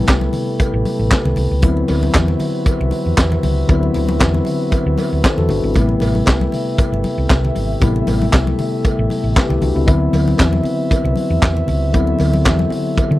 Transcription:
Already playing: tine electric piano C3 G3 A3 B3 E4, french horn section A3 G4 A4 B4
0.07 fingered electric bass C2, kick, snare, clap, closed hi-hat, cowbell
0.21 muted conga, high conga
0.33 open hi-hat, low conga
0.59 kick, closed hi-hat, cowbell
0.74 fingered electric bass A1
0.85 open hi-hat, high conga
0.99 fingered electric bass A1
1.11 kick, snare, clap, closed hi-hat, cowbell, muted conga, high conga
1.25 fingered electric bass C2, muted conga, low conga
1.36 fingered electric bass C2, open hi-hat, high conga, low conga
1.51 fingered electric bass C#2
1.62 fingered electric bass D2, french horn section C3 F#4 E5, tine electric piano D3 F#3 B3 C4 E4, kick, closed hi-hat, cowbell, muted conga
1.77 muted conga
1.88 fingered electric bass D2, open hi-hat, cowbell, high conga
2.03 high conga
2.14 fingered electric bass E2, kick, snare, clap, closed hi-hat, cowbell
2.28 high conga
2.40 open hi-hat, low conga
2.66 kick, closed hi-hat, cowbell, muted conga
2.81 fingered electric bass C2, muted conga
2.91 open hi-hat, high conga
3.06 fingered electric bass E2
3.17 fingered electric bass E2, kick, snare, clap, closed hi-hat, cowbell, high conga
3.32 muted conga, low conga
3.43 fingered electric bass C#2, open hi-hat, high conga, low conga
3.68 fingered electric bass D2, tine electric piano D3 F#3 B3 C4 E4, kick, closed hi-hat, cowbell
3.83 muted conga
3.94 fingered electric bass D2, open hi-hat, high conga
4.09 high conga
4.20 fingered electric bass E2, kick, snare, clap, closed hi-hat, cowbell, muted conga
4.34 muted conga, high conga
4.45 open hi-hat, low conga
4.72 kick, closed hi-hat, cowbell, muted conga
4.86 fingered electric bass D2
4.97 open hi-hat, cowbell, high conga
5.12 fingered electric bass D2
5.24 tine electric piano A4 C5, kick, snare, clap, closed hi-hat, cowbell, muted conga, high conga
5.38 fingered electric bass E2, tine electric piano F#4 A4, muted conga, low conga
5.49 fingered electric bass G1, tine electric piano D4 F#4, open hi-hat, high conga, low conga
5.64 fingered electric bass G#1, tine electric piano C4 E4
5.74 fingered electric bass A1, tine electric piano C3 G3 A3 B3, french horn section A3 G4 E5, kick, closed hi-hat, cowbell, muted conga
5.78 tine electric piano E4
5.89 muted conga
6.00 fingered electric bass A1, open hi-hat, cowbell, high conga
6.15 high conga
6.26 fingered electric bass C2, kick, snare, clap, closed hi-hat, cowbell
6.41 muted conga, high conga
6.52 open hi-hat, low conga
6.78 kick, closed hi-hat, cowbell, muted conga
6.92 fingered electric bass G1, muted conga
7.04 open hi-hat, high conga
7.18 fingered electric bass C2
7.30 fingered electric bass C2, kick, snare, clap, closed hi-hat, cowbell, muted conga, high conga
7.45 low conga
7.55 fingered electric bass G#1, open hi-hat, high conga, low conga
7.80 fingered electric bass A1, tine electric piano C3 G3 A3 B3 E4, french horn section A4, kick, closed hi-hat, cowbell, muted conga
7.96 muted conga
8.07 fingered electric bass A1, open hi-hat, cowbell, high conga
8.22 high conga
8.32 fingered electric bass C2, kick, snare, clap, closed hi-hat, cowbell, muted conga
8.47 muted conga, high conga
8.59 open hi-hat, low conga
8.85 kick, closed hi-hat, cowbell, muted conga
8.99 fingered electric bass A1
9.10 open hi-hat, high conga
9.24 fingered electric bass A1
9.36 tine electric piano G4 B4, kick, snare, clap, closed hi-hat, cowbell, muted conga, high conga
9.49 fingered electric bass C2, tine electric piano E4 G4, muted conga, low conga
9.61 fingered electric bass C2, tine electric piano D4 F#4, open hi-hat, high conga, low conga
9.75 fingered electric bass C#2, tine electric piano C4 E4
9.86 fingered electric bass D2, french horn section C3 F#4 B4 E5, tine electric piano D3 F3 B3 C4 E4, kick, closed hi-hat, cowbell, muted conga
9.93 tine electric piano F#3
10.13 fingered electric bass D2, open hi-hat, cowbell, high conga
10.27 high conga
10.38 fingered electric bass E2, kick, snare, clap, closed hi-hat, cowbell
10.53 muted conga, high conga
10.63 open hi-hat, low conga
10.91 kick, closed hi-hat, cowbell, muted conga
11.04 fingered electric bass C2, muted conga
11.16 open hi-hat, high conga
11.30 fingered electric bass E2
11.42 kick, snare, clap, closed hi-hat, cowbell, high conga
11.57 muted conga, low conga
11.68 fingered electric bass C#2, open hi-hat, high conga, low conga
11.92 fingered electric bass D2, tine electric piano D3 F#3 B3 C4 E4, french horn section A4, kick, closed hi-hat, cowbell, muted conga
12.07 muted conga
12.19 fingered electric bass D2, open hi-hat, cowbell, high conga
12.33 high conga
12.45 fingered electric bass E2, kick, snare, clap, closed hi-hat, cowbell
12.59 muted conga, high conga
12.70 open hi-hat, low conga
12.97 muted fingered electric bass stroke, kick, closed hi-hat, cowbell
13.11 fingered electric bass D3, muted conga

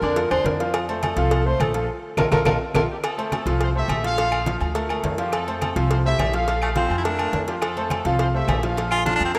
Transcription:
Already playing: tenor saxophone A#4
0.02 upright bass F2, grand piano D3 D4 D5, high conga, low agogo
0.16 grand piano F3 F4 A4, cowbell, high conga, low agogo
0.30 upright bass E2, grand piano D3 D4 D5, tenor saxophone C5, high conga, low agogo, claves
0.44 upright bass F2, tenor saxophone A#4, cowbell, high conga, low timbale
0.60 grand piano F3 F4 F5, cowbell
0.74 cowbell, high conga, low agogo, claves
0.89 grand piano A3 A4 C5, high conga, low agogo
1.03 tenor saxophone A4, cowbell, high conga, low agogo, claves
1.16 upright bass C2, grand piano F3 F4 F5, cowbell, high conga
1.31 cowbell, high conga, low agogo
1.46 grand piano A3 A4 C5, tenor saxophone C5, high conga
1.60 upright bass A#1, tenor saxophone A4, cowbell, high conga, low agogo, claves
1.74 grand piano F3 F4 A4, cowbell
2.17 upright bass A#1, grand piano F4 A4 A#4, tenor saxophone A#4, cowbell, high conga, high timbale, claves
2.31 upright bass A#1, grand piano F4 A4 A#4, tenor saxophone A#4, cowbell, high conga, high timbale, claves
2.45 upright bass A#1, grand piano F4 A4 A#4, tenor saxophone A#4, cowbell, high conga, high timbale, claves
2.74 upright bass A#1, grand piano F4 A4 A#4, tenor saxophone A#4, cowbell, high conga, high timbale, claves
2.92 horn section A#3 G4
3.04 horn section C4 A4, cowbell, high conga, low agogo, claves
3.18 grand piano A3 A4 C5, high conga, low agogo
3.32 horn section C4 A4, cowbell, high conga, low agogo, claves
3.46 upright bass C2, grand piano F3 F4 F5, cowbell, high conga
3.60 horn section E4 C5, cowbell, high conga, low agogo
3.75 grand piano A3 A4 C5, horn section G4 E5, high conga
3.88 upright bass A#1, cowbell, high conga, low agogo, claves
4.04 grand piano F3 F4 F5, horn section A4 F5, cowbell
4.18 grand piano F3 F4 F5, cowbell, high conga, low agogo
4.32 high conga, low agogo, claves
4.46 grand piano F3 F4 F5, cowbell, high conga
4.60 upright bass D2, high conga, low agogo
4.75 grand piano A3 A4 A#4, cowbell, high conga, low agogo
4.89 grand piano A3 A4 A#4, high conga, low agogo, claves
5.04 upright bass F2, cowbell, high conga, low timbale
5.18 grand piano F3 F4 F5, horn section A#3 G4, cowbell, high conga
5.32 horn section C4 A4, cowbell, high conga, low agogo, claves
5.48 grand piano A3 A4 C5, high conga, low agogo
5.61 horn section C4 A4, cowbell, high conga, low agogo, claves
5.76 upright bass C2, grand piano F3 F4 F5, cowbell, high conga
5.91 horn section E4 C5, cowbell, high conga, low agogo
6.05 grand piano A3 A4 C5, horn section G4 E5, high conga
6.19 upright bass A#1, cowbell, high conga, low timbale, low agogo, claves
6.34 grand piano F3 F4 F5, horn section A4 F5, cowbell
6.47 grand piano F3 F4 F5, cowbell, high conga, low agogo
6.62 baritone saxophone A3, high conga, low agogo, claves
6.76 grand piano F3 F4 F5, baritone saxophone C4, cowbell, high conga
6.90 upright bass F2, high conga, low agogo
6.98 baritone saxophone E4
7.04 grand piano A3 A4 A#4, baritone saxophone D4, cowbell, high conga, low agogo
7.19 grand piano A3 A4 A#4, high conga, low agogo, claves
7.33 upright bass F2, cowbell, high conga, low timbale
7.48 grand piano F3 F4 F5, horn section A#3 G4, cowbell, high conga
7.62 horn section C4 A4, cowbell, high conga, low agogo, claves
7.76 grand piano A3 A4 C5, high conga, low agogo
7.90 horn section C4 A4, cowbell, high conga, low agogo, claves
8.05 upright bass C2, grand piano F3 F4 F5, cowbell, high conga
8.19 horn section E4 C5, cowbell, high conga, low agogo
8.34 grand piano A3 A4 C5, horn section G4 E5, high conga
8.48 upright bass A#1, cowbell, high conga, low timbale, low agogo, claves
8.63 grand piano F3 F4 F5, horn section A4 F5, cowbell, high conga
8.77 grand piano F3 F4 F5, cowbell, high conga, low agogo
8.91 baritone saxophone F4, high conga, low agogo, claves
9.06 grand piano F3 F4 F5, baritone saxophone D4, cowbell, high conga
9.16 baritone saxophone D4
9.20 upright bass F2, high conga, low agogo
9.25 baritone saxophone C4
9.34 grand piano A3 A4 A#4, baritone saxophone A#3, cowbell, high conga, low agogo

